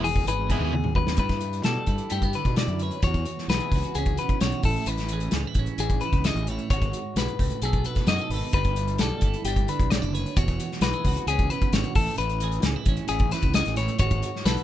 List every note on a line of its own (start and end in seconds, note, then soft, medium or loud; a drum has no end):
0.00 0.25 E1 medium
0.00 0.71 E2 medium
0.00 1.18 B3 medium
0.00 1.18 D#4 soft
0.04 0.27 G#4 medium
0.04 muted overdriven electric guitar stroke soft
0.04 open hi-hat medium
0.16 kick medium
0.26 0.60 G#1 medium
0.26 1.17 G#4 medium
0.26 0.51 B4 medium
0.26 muted overdriven electric guitar stroke soft
0.26 closed hi-hat medium
0.49 1.18 B2 medium
0.49 0.74 G#3 medium
0.49 0.74 B3 medium
0.49 0.74 E4 medium
0.49 0.96 G#4 medium
0.49 kick medium
0.49 closed hi-hat medium
0.53 0.73 E3 medium
0.60 1.16 D#2 medium
0.73 0.95 E2 medium
0.73 muted overdriven electric guitar stroke soft
0.73 high tom soft
0.84 mid tom medium
0.95 1.18 F#2 medium
0.95 1.18 B4 medium
0.95 muted overdriven electric guitar stroke soft
0.95 kick medium
1.07 snare medium
1.17 1.62 G2 medium
1.17 3.00 G2 medium
1.17 1.89 E4 medium
1.17 1.64 B4 medium
1.17 kick medium
1.17 closed hi-hat medium
1.29 kick medium
1.29 snare soft
1.29 closed hi-hat soft
1.41 closed hi-hat medium
1.53 closed hi-hat soft
1.63 1.76 B2 medium
1.63 3.00 G3 medium
1.63 2.11 A4 medium
1.63 2.81 D5 soft
1.63 snare medium
1.63 closed hi-hat medium
1.86 1.99 G2 medium
1.86 2.60 E4 soft
1.86 kick medium
1.86 closed hi-hat medium
1.98 closed hi-hat soft
2.10 2.33 G2 medium
2.10 2.23 A3 medium
2.10 2.35 G4 medium
2.10 closed hi-hat medium
2.22 3.04 B3 soft
2.22 kick medium
2.22 closed hi-hat soft
2.33 3.01 D3 medium
2.33 2.57 B4 medium
2.33 closed hi-hat soft
2.45 2.67 B2 medium
2.45 kick medium
2.45 closed hi-hat soft
2.56 3.07 E4 medium
2.56 2.82 D5 medium
2.56 snare medium
2.56 closed hi-hat medium
2.68 2.90 F#2 medium
2.68 closed hi-hat soft
2.79 3.04 B4 medium
2.79 3.02 C#5 medium
2.79 closed hi-hat medium
2.91 closed hi-hat soft
3.02 3.25 E2 medium
3.02 3.49 C#5 medium
3.02 kick loud
3.02 closed hi-hat medium
3.06 4.64 E2 medium
3.06 3.74 F#4 soft
3.14 kick medium
3.14 closed hi-hat soft
3.25 closed hi-hat medium
3.38 snare soft
3.48 3.60 B1 medium
3.48 5.11 E3 medium
3.48 3.96 B4 medium
3.48 snare medium
3.48 closed hi-hat medium
3.53 4.67 G#4 medium
3.60 closed hi-hat soft
3.72 3.83 C#2 medium
3.72 kick medium
3.72 open hi-hat medium
3.76 4.43 F#4 medium
3.84 closed hi-hat soft
3.95 4.17 C#2 medium
3.95 5.34 C#4 medium
3.95 4.18 G#4 medium
3.95 closed hi-hat medium
4.06 kick medium
4.06 closed hi-hat soft
4.17 4.66 B2 medium
4.17 4.41 B4 medium
4.17 closed hi-hat medium
4.29 kick medium
4.29 closed hi-hat soft
4.40 4.52 B1 medium
4.40 4.63 F#4 medium
4.40 4.65 C#5 medium
4.40 snare loud
4.40 closed hi-hat medium
4.52 closed hi-hat soft
4.63 4.75 A1 medium
4.63 6.45 A2 medium
4.63 5.33 E4 medium
4.63 4.88 A4 medium
4.63 kick medium
4.63 open hi-hat medium
4.86 5.30 A1 medium
4.86 5.33 B4 medium
4.86 closed hi-hat medium
4.97 snare soft
4.97 closed hi-hat soft
5.08 closed hi-hat medium
5.12 5.80 E3 medium
5.12 6.26 G#4 medium
5.20 closed hi-hat soft
5.31 5.44 C#2 medium
5.31 5.47 C#4 soft
5.31 snare medium
5.31 closed hi-hat medium
5.47 6.03 E4 soft
5.54 5.67 A1 medium
5.54 kick medium
5.54 closed hi-hat medium
5.59 6.47 C#4 medium
5.66 closed hi-hat soft
5.78 6.00 A1 medium
5.78 6.46 E3 medium
5.78 6.03 G#4 medium
5.78 closed hi-hat medium
5.90 kick medium
5.90 closed hi-hat soft
6.01 6.26 B4 medium
6.01 closed hi-hat medium
6.05 6.47 E4 soft
6.12 6.35 C#2 medium
6.12 kick medium
6.12 closed hi-hat soft
6.24 6.47 G#4 medium
6.24 6.48 D#5 medium
6.24 snare loud
6.24 closed hi-hat medium
6.35 6.57 A1 medium
6.35 closed hi-hat soft
6.47 6.69 A2 medium
6.47 6.69 C#5 medium
6.47 closed hi-hat medium
6.51 6.70 E4 medium
6.58 closed hi-hat soft
6.70 6.92 G#1 medium
6.70 7.15 G#2 medium
6.70 7.61 F#4 medium
6.70 7.17 C#5 medium
6.70 kick medium
6.70 closed hi-hat medium
6.82 kick medium
6.82 closed hi-hat soft
6.93 closed hi-hat medium
7.16 7.27 B1 medium
7.16 7.39 G#2 medium
7.16 7.63 B4 medium
7.16 snare medium
7.16 closed hi-hat medium
7.28 closed hi-hat soft
7.39 7.50 C#2 medium
7.39 7.63 A2 medium
7.39 kick medium
7.39 open hi-hat medium
7.51 closed hi-hat soft
7.62 7.84 B1 medium
7.62 8.55 B2 medium
7.62 7.86 G#4 medium
7.62 8.09 A4 medium
7.62 closed hi-hat medium
7.73 kick medium
7.73 closed hi-hat soft
7.84 8.08 B4 medium
7.84 closed hi-hat medium
7.95 kick medium
7.95 snare soft
7.95 closed hi-hat soft
8.07 8.18 F#2 medium
8.07 8.52 D#4 medium
8.07 8.22 F#4 medium
8.07 8.31 D#5 medium
8.07 snare medium
8.07 closed hi-hat medium
8.18 8.32 A4 soft
8.18 closed hi-hat soft
8.30 8.41 G#1 medium
8.30 8.53 B4 medium
8.30 open hi-hat medium
8.34 8.53 A4 medium
8.53 8.97 G1 medium
8.53 10.34 G2 medium
8.53 9.00 G3 medium
8.53 9.47 D4 soft
8.53 9.00 B4 medium
8.53 kick loud
8.53 closed hi-hat medium
8.57 9.25 E4 medium
8.57 9.01 B4 medium
8.64 kick medium
8.64 closed hi-hat soft
8.76 closed hi-hat medium
8.87 closed hi-hat soft
8.98 9.11 B1 medium
8.98 10.34 G3 medium
8.98 9.45 A4 medium
8.98 10.14 D5 medium
8.98 snare medium
8.98 closed hi-hat medium
9.21 9.33 G1 medium
9.21 kick medium
9.21 closed hi-hat medium
9.25 9.92 E4 soft
9.34 closed hi-hat soft
9.44 9.66 G1 medium
9.44 10.35 D4 medium
9.44 9.68 G4 medium
9.44 closed hi-hat medium
9.56 kick medium
9.56 closed hi-hat soft
9.68 10.34 D3 medium
9.68 9.90 B4 medium
9.68 closed hi-hat medium
9.79 10.01 B1 medium
9.79 kick medium
9.79 closed hi-hat soft
9.90 10.02 C#4 medium
9.90 10.14 D5 medium
9.90 snare loud
9.90 closed hi-hat medium
10.02 10.24 F#1 medium
10.02 10.36 E4 soft
10.02 closed hi-hat soft
10.14 10.37 B4 medium
10.14 10.34 C#5 medium
10.14 closed hi-hat medium
10.26 closed hi-hat soft
10.36 10.58 E1 medium
10.36 11.96 E2 medium
10.36 10.82 F#4 medium
10.36 10.82 C#5 medium
10.36 kick loud
10.36 closed hi-hat medium
10.48 kick medium
10.48 closed hi-hat soft
10.60 closed hi-hat medium
10.71 snare soft
10.81 10.92 B1 medium
10.81 12.41 E3 medium
10.81 10.94 F#4 medium
10.81 11.28 B4 medium
10.81 snare medium
10.81 closed hi-hat medium
10.93 11.96 G#4 soft
10.93 closed hi-hat soft
11.05 11.16 C#2 medium
11.05 11.74 F#4 medium
11.05 kick medium
11.05 open hi-hat medium
11.17 closed hi-hat soft
11.27 11.49 C#2 medium
11.27 12.66 C#4 medium
11.27 11.50 G#4 medium
11.27 closed hi-hat medium
11.39 kick medium
11.39 closed hi-hat soft
11.50 11.96 B2 medium
11.50 11.73 B4 medium
11.50 closed hi-hat soft
11.62 kick medium
11.62 closed hi-hat soft
11.72 11.84 G#1 medium
11.72 11.95 F#4 medium
11.72 11.95 C#5 medium
11.72 snare loud
11.72 closed hi-hat medium
11.84 closed hi-hat soft
11.95 12.07 A1 medium
11.95 13.75 A2 medium
11.95 12.65 E4 medium
11.95 12.18 A4 medium
11.95 kick medium
11.95 open hi-hat medium
12.18 12.62 A1 medium
12.18 12.64 B4 medium
12.18 closed hi-hat medium
12.29 closed hi-hat soft
12.40 13.10 E3 medium
12.40 13.56 G#4 medium
12.40 closed hi-hat medium
12.52 closed hi-hat soft
12.62 12.75 C#2 medium
12.62 12.76 C#4 medium
12.62 snare loud
12.62 closed hi-hat medium
12.76 13.33 E4 medium
12.86 12.98 A1 medium
12.86 13.76 C#4 medium
12.86 kick medium
12.86 closed hi-hat medium
12.97 closed hi-hat soft
13.08 13.31 A1 medium
13.08 13.76 E3 medium
13.08 13.32 G#4 medium
13.08 closed hi-hat medium
13.19 kick medium
13.19 closed hi-hat soft
13.31 13.76 E4 medium
13.31 13.55 B4 medium
13.31 snare soft
13.31 closed hi-hat medium
13.42 13.65 C#2 medium
13.42 kick medium
13.42 closed hi-hat soft
13.54 13.79 G#4 medium
13.54 13.77 D#5 medium
13.54 snare loud
13.54 closed hi-hat medium
13.66 13.88 A1 medium
13.66 snare soft
13.66 closed hi-hat soft
13.76 13.97 A2 medium
13.76 13.98 E4 medium
13.76 13.98 C#5 medium
13.76 snare soft
13.76 closed hi-hat medium
13.88 closed hi-hat soft
13.98 14.21 G#1 loud
13.98 14.63 G#2 medium
13.98 14.63 F#4 medium
13.98 14.46 C#5 medium
13.98 kick loud
13.98 closed hi-hat medium
14.10 kick medium
14.10 closed hi-hat soft
14.22 closed hi-hat medium
14.36 snare soft
14.45 14.57 B1 medium
14.45 14.63 E3 medium
14.45 14.63 A4 medium
14.45 14.63 B4 medium
14.45 snare loud
14.45 closed hi-hat medium
14.57 closed hi-hat soft